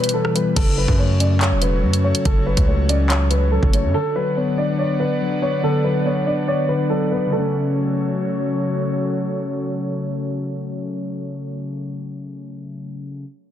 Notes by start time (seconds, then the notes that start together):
Already playing: B2 E3 G3 B3 E4 G4 B4
0.04 closed hi-hat
0.09 closed hi-hat
0.14 E3 A4
0.25 cross-stick
0.35 G3 B4, closed hi-hat
0.56 F#1 C#3 F#3 F#4 A4 C#5, kick, closed hi-hat, crash
0.78 F#3 B4
0.88 F#2, kick
0.99 A3 C#5
1.20 C#4 D5, closed hi-hat
1.41 C#5, clap, closed hi-hat
1.51 E1
1.62 C#3 B4, closed hi-hat
1.83 F#2 F#3
1.93 closed hi-hat
2.04 A3 C#5
2.15 closed hi-hat
2.25 F#1 C#3 A4, kick, closed hi-hat
2.46 F#3 B4
2.57 C#2, kick, closed hi-hat
2.67 A3 C#5
2.89 C#4 D5, closed hi-hat
3.10 C#5, clap, closed hi-hat
3.31 C#3 B4, closed hi-hat
3.52 F#3 A4
3.63 F#1, kick
3.73 A3 C#5, closed hi-hat
3.84 F#2
3.94 D3 B3 A4 B4 D5 F#5
4.16 F#3 B4
4.36 B3 C#5
4.58 D4 D5
4.79 C#5 D5
5.00 D3 B4
5.21 F#3
5.42 B3 C#5
5.63 D3 A4
5.84 F#3 B4
6.06 B3 C#5
6.27 D4 D5
6.48 C#5 D5
6.69 D3 B4
6.90 F#3 A4
7.12 B3 B4
7.26 C#3
7.31 F#3 A3 F#4 A4 C#5
7.39 C#4